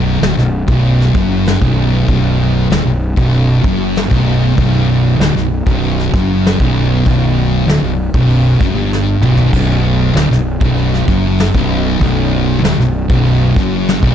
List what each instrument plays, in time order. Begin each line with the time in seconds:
Already playing: fingered electric bass B0, distorted electric guitar B1
0.21 fingered electric bass D1, distorted electric guitar D2, snare, open hi-hat
0.37 fingered electric bass B0, distorted electric guitar B1, snare
0.67 fingered electric bass B0, distorted electric guitar B1, kick
0.83 open hi-hat
1.01 snare
1.14 fingered electric bass F#1, distorted electric guitar F#2, kick
1.46 snare, open hi-hat
1.61 fingered electric bass B0, distorted electric guitar B1, kick
2.07 fingered electric bass B0, distorted electric guitar B1, kick, open hi-hat
2.70 fingered electric bass D1, distorted electric guitar D2, snare, open hi-hat
2.85 fingered electric bass B0, distorted electric guitar B1
3.16 fingered electric bass B0, distorted electric guitar B1, kick
3.33 open hi-hat
3.63 fingered electric bass F#1, distorted electric guitar F#2, kick
3.96 snare, open hi-hat
4.09 fingered electric bass B0, distorted electric guitar B1, kick
4.57 fingered electric bass B0, distorted electric guitar B1, kick, open hi-hat
5.19 fingered electric bass D1, distorted electric guitar D2, snare, open hi-hat
5.36 fingered electric bass B0, distorted electric guitar B1, snare
5.66 fingered electric bass B0, distorted electric guitar B1, kick
5.82 open hi-hat
6.00 snare
6.13 fingered electric bass F#1, distorted electric guitar F#2, kick
6.45 snare, open hi-hat
6.60 fingered electric bass B0, distorted electric guitar B1, kick
7.06 fingered electric bass B0, distorted electric guitar B1, kick, open hi-hat
7.67 fingered electric bass D1, distorted electric guitar D2, snare, open hi-hat
7.83 fingered electric bass B0, distorted electric guitar B1
8.14 fingered electric bass B0, distorted electric guitar B1, kick
8.30 open hi-hat
8.61 fingered electric bass F#1, distorted electric guitar F#2, kick
8.73 fingered electric bass G1, distorted electric guitar G2
8.93 snare
9.20 fingered electric bass B0, distorted electric guitar B1, mid tom
9.37 floor tom
9.52 fingered electric bass B0, distorted electric guitar B1, kick, open hi-hat, crash
10.15 fingered electric bass D1, distorted electric guitar D2, snare, open hi-hat
10.30 fingered electric bass B0, distorted electric guitar B1, snare
10.61 fingered electric bass B0, distorted electric guitar B1, kick
10.76 open hi-hat
10.94 snare
11.08 fingered electric bass F#1, distorted electric guitar F#2, kick
11.38 snare, open hi-hat
11.54 fingered electric bass B0, distorted electric guitar B1, kick
12.00 fingered electric bass B0, distorted electric guitar B1, kick, open hi-hat
12.62 fingered electric bass D1, distorted electric guitar D2, snare, open hi-hat
12.77 fingered electric bass B0, distorted electric guitar B1, snare
13.09 fingered electric bass B0, distorted electric guitar B1, kick
13.25 open hi-hat
13.56 fingered electric bass F#1, distorted electric guitar F#2, kick
13.87 snare, open hi-hat
14.02 fingered electric bass B0, distorted electric guitar B1, kick